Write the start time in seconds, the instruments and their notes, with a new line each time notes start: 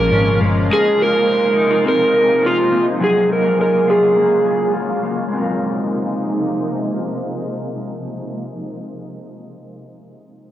Already playing: picked electric bass A#1, clean electric guitar A#2 F3 C#4 G#4, ambient pad C#3 F3 G#3 A#3 F4, electric slide guitar A#4
0.12 picked electric bass G#1, clean electric guitar C#4
0.41 picked electric bass G1, clean electric guitar G#3
0.70 ambient pad C3 D#4, clean electric guitar G#3 A#4, electric slide guitar G#4
0.99 clean electric guitar F4, electric slide guitar A#4
1.28 clean electric guitar A#4
1.56 clean electric guitar D#4
1.71 clean electric guitar F4
1.85 clean electric guitar C4, electric slide guitar A#4
2.14 clean electric guitar A#4
2.43 clean electric guitar F4, electric slide guitar F4
2.71 clean electric guitar C4
3.00 ambient pad C#3 F#3 F4, clean electric guitar F#3 G#4, electric slide guitar G#4
3.29 clean electric guitar D#4, electric slide guitar A#4
3.44 clean electric guitar F4
3.58 clean electric guitar G#4, electric slide guitar A#4
3.87 clean electric guitar F4, electric slide guitar G#4
4.16 clean electric guitar A#3
4.45 clean electric guitar G#4
4.74 clean electric guitar F4
5.03 clean electric guitar A#3
5.28 ambient pad C3 F3 G#3 A#3 D#4, clean electric guitar G#3
5.33 clean electric guitar C4 F4
5.41 clean electric guitar A#4